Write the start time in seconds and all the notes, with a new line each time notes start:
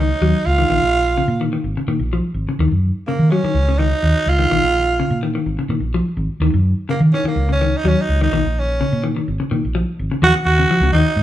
Already playing: C#2
0.00 D#3 D#4
0.21 D#2 F#3
0.46 C#2 F4
0.58 D#3
0.70 A#1 D#3
0.82 A#1
1.17 C#3
1.28 A#2
1.41 D#3
1.53 D#3
1.64 G#1
1.77 C#3
1.88 A#2 D#3
1.99 A#1
2.13 F3
2.34 G#1
2.47 C#3, muted fingered electric bass stroke
2.59 D#2 D#3
2.71 F#2
3.07 C#3 A#3
3.19 D#3
3.31 F#3 C#4
3.43 D#3, muted fingered electric bass stroke
3.54 C#2
3.69 C#3
3.78 D#3 D#4
4.03 D#2
4.26 C#2 F4
4.39 D#3
4.51 A#1 D#3
4.63 A#1
5.00 C#3
5.10 A#2
5.23 D#3
5.35 D#3
5.46 G#1
5.59 C#3
5.69 A#2 D#3
5.80 A#1
5.94 F3
6.17 G#1
6.29 muted fingered electric bass stroke
6.40 D#2 D#3
6.54 F#2
6.89 C#3 A#3
7.00 D#3
7.14 D#3 C#4
7.23 D#3, muted fingered electric bass stroke
7.27 A#3
7.36 C#2
7.49 C#3 C#4
7.61 D#3
7.77 D#4
7.84 D#2 F#3
7.88 C#4
8.01 D#4
8.09 C#2
8.21 D#3 D#4
8.32 A#1 D#3
8.46 A#1
8.59 C#4
8.81 C#3
8.92 A#2
9.04 D#3
9.17 D#3
9.28 G#1
9.40 C#3
9.51 A#2 D#3
9.65 A#1
9.75 F3
9.99 G#1
10.12 C#3, muted fingered electric bass stroke
10.22 D#2 F3 F#4
10.35 muted clean electric guitar stroke
10.45 D#2 F#4
10.59 C#3
10.71 F3
10.80 C#2 C#3
10.92 D#2 D#3 D#4
11.16 G#2